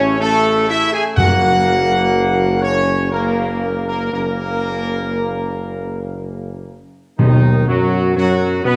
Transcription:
Already playing: A1 C#3 A3 C#4 C#5
0.20 C#3 A3 A4
0.68 E4 E5
0.92 G#4 G#5
1.17 F#1 F#2 C#3 A#3 F#4 F#5
2.62 C#4 C#5
3.11 C#3 A#3 A#4
3.87 A#3 A#4
4.12 F#1 C#3 A#3 A#4
7.19 D#2 B2 D#3 D#4
7.67 F#2 F#3 F#4
8.16 F#2 F#3 F#4
8.64 B2 B3 B4

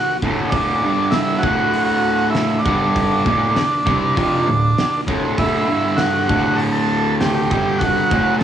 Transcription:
Already playing: F#4
0.22 D2 A2 D3, kick
0.50 D2 D4, kick, open hi-hat
0.54 A2 D3
0.83 G2 D3 G3
1.11 E4, snare, open hi-hat
1.39 F#4
1.43 D2 A2 D3, kick
1.73 open hi-hat
1.85 F#4
2.30 E4
2.35 snare, open hi-hat
2.59 D4
2.65 G2 D3 G3, kick
2.96 kick, open hi-hat
3.25 D2 A2 D3, kick
3.56 muted distorted electric guitar stroke, snare, open hi-hat
3.86 C3 G3 C4, kick
4.16 F2 C3 F3, kick, open hi-hat
4.47 D2 A2
4.78 snare, open hi-hat
5.07 D2 A2 D3, kick
5.38 D2 A2 D3 E4, kick, open hi-hat
5.68 G2 D3 G3
5.96 F#4, snare, open hi-hat
6.29 D2 A2 D3, kick
6.56 A4, open hi-hat
6.72 A4
7.21 G4, snare, open hi-hat
7.51 G2 D3 G3, kick
7.79 F#4, kick, open hi-hat
8.11 D2 A2 D3, kick
8.39 A4

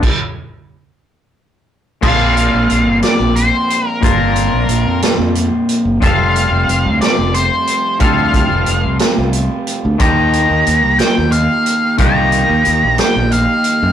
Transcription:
0.03 kick, crash
2.01 A#1 A#2 F3 A#3 C4 F4 F5, kick, crash
2.37 closed hi-hat
2.54 A#1
2.70 A#1, closed hi-hat
2.87 G1
3.03 D5, snare, closed hi-hat
3.20 A#1
3.36 C5, closed hi-hat
3.70 closed hi-hat
3.88 A#4
4.01 G1 A#2 F3 A#3 C4 F4 A#4, kick, closed hi-hat
4.36 closed hi-hat
4.53 A#1
4.69 A#1, closed hi-hat
4.86 F2
5.02 snare, closed hi-hat
5.19 F2
5.35 closed hi-hat
5.69 closed hi-hat
5.85 F#1
6.00 F1 F2 C3 F3 G3 A3 C4 F4 A4 F5, kick, closed hi-hat
6.36 closed hi-hat
6.51 F1
6.68 F1, closed hi-hat
6.85 D2
7.01 D5, snare, closed hi-hat
7.18 F1
7.34 C5, closed hi-hat
7.67 closed hi-hat
7.99 D2 F2 C3 F3 G3 C4 F4 A4 F5, kick, closed hi-hat
8.03 A3
8.34 kick, closed hi-hat
8.51 F1
8.66 F1, closed hi-hat
8.84 C2
8.99 snare, closed hi-hat
9.18 C2
9.33 closed hi-hat
9.67 closed hi-hat
9.85 D2
9.98 D#2 D#3 F3 A#3 D#4 G4 A#5, kick, closed hi-hat
10.33 closed hi-hat
10.50 D#2
10.67 D#2, closed hi-hat
10.84 C2
10.99 G5, snare, closed hi-hat
11.18 D#2
11.32 F5, closed hi-hat
11.66 closed hi-hat
11.98 C2 D#3 F3 A#3 D#4 G4 A#5, kick, closed hi-hat
12.32 closed hi-hat
12.50 D#2
12.65 D#2, closed hi-hat
12.83 A#1
12.98 G5, snare, closed hi-hat
13.16 A#1
13.32 F5, closed hi-hat
13.64 closed hi-hat
13.83 F#2

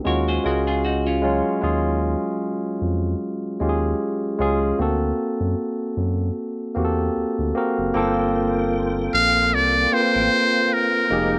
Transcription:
0.04 D#2 G#3 C#4 F4 F#4 A#4 C#5
0.28 G#4 C5
0.44 C#2 G#3 C#4 F4 F#4 G#4 A#4
0.67 F4 G#4
0.85 D#4 F#4
1.07 C#4 F4
1.22 F#3 G#3 C#4 F4
1.62 D#2 G#3 C#4 F4 G#4
2.82 F2
3.60 D#2 G#3 C#4 F4 G4
3.69 G#4
4.39 C#2 G#3 C#4 F4 G#4
4.79 D2 A#3 C4 F#4 A4
5.40 F#2
5.97 F#2
6.75 E2 A#3 C4 F#4 G4
6.85 A4
7.16 D2
7.39 D2
7.55 A#3 C4 F#4 A#4
7.78 F#1
7.94 G1 A#3 C4 F4 A4 G5
9.14 A#1 F5
9.53 C2 D5
9.92 A#3 C4 F4 B4 C5
10.01 C5
10.15 A1
10.73 A#4
11.10 F1 F3 G#3 A#3 D#4 G4 G#4 A#4

